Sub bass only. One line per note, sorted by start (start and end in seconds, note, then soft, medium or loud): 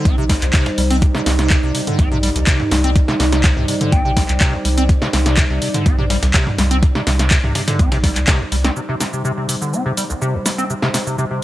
0.05 0.37 A#1 medium
0.42 0.51 C2 medium
0.78 1.10 C2 medium
1.26 1.58 C2 loud
1.63 1.72 C2 medium
1.99 2.31 A#1 medium
2.35 2.44 C2 medium
2.71 3.03 C2 loud
3.20 3.52 C2 loud
3.57 3.65 C2 medium
3.92 4.24 A#1 medium
4.29 4.38 C2 medium
4.65 4.97 C2 loud
5.13 5.45 C2 loud
5.50 5.59 C2 medium
5.86 6.18 A#1 medium
6.23 6.31 C2 medium
6.59 6.90 C2 loud
7.07 7.39 C2 loud
7.43 7.52 C2 medium
7.79 8.11 A#1 medium
8.16 8.25 C2 medium
8.52 8.70 C2 loud